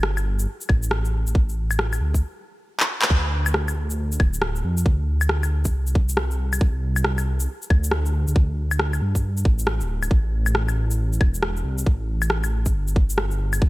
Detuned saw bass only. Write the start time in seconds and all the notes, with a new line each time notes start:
Already playing: G1
0.70 A1
1.27 A1
2.01 D2
3.10 D2
4.20 D1
4.64 F2
4.86 D2
5.74 C2
7.70 D2
8.28 D2
9.02 G2
9.45 A1
9.81 D1
9.89 D1
10.11 A1
11.21 E1
11.65 C2
11.86 A1
12.74 G1